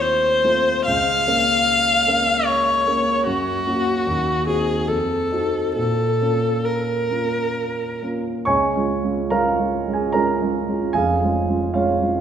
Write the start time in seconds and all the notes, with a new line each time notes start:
Already playing: D#2 A3 C4 F4
0.00 C5
0.44 A3 C4 F4
0.86 C#2 F5
1.27 A#3 C#4 A#4
2.07 A#3 C#4 A#4
2.47 C#5
2.87 A#3 C#4 A#4
3.27 F#2 F#4
3.67 A#3 C#4 F#4
4.07 D#2
4.47 C4 D#4 F#4 G#4
4.88 F2 A4
5.31 C4 D#4 F#4
5.76 A#2 A4
6.21 A#3 C#4 F4
6.65 A#4
7.11 A#3 C#4 F4
8.02 A#3 C#4 F4
8.45 C#2 C#5 G#5 C#6
8.76 G#3 C#4 F4
9.04 G#3 C#4 F4
9.30 G#3 C#4 F4 A#4 F5 A#5
9.59 G#3 C#4 F4
9.87 G#3 C#4 F4
9.93 G#4 G#5
10.12 G#3 C#4 F4 A#4 A#5
10.42 G#3 C#4 F4
10.68 G#3 C#4 F4
10.93 F1 F2 G#4 F5 G#5
11.23 G#3 C#4 F4
11.49 G#3 C#4 F4
11.74 G#3 C#4 F4 C#5 F5
12.02 G#3 C#4 F4